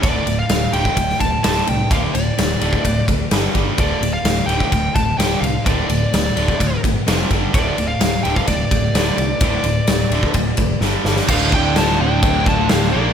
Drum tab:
CC |----------------|----------------|----------------|----------------|
RD |x-x-x-x-x-x-x-x-|x-x-x-x-x-x-x-x-|x-x-x-x-x-x-x-x-|x-x-x-x-x-x-x-x-|
SD |----o----o--o---|----o-------o---|----o-------o---|----o-------o---|
BD |o------oo-o-----|o------oo-o---o-|o------oo-o-----|o------oo-o---o-|

CC |----------------|----------------|x---x---x---x---|
RD |x-x-x-x-x-x-x-x-|x-x-x-x-x-x-----|----------------|
SD |----o-------o---|----o-------o-oo|----o-------o---|
BD |o------oo-o-----|o------oo-o-----|o-o-----o-o-----|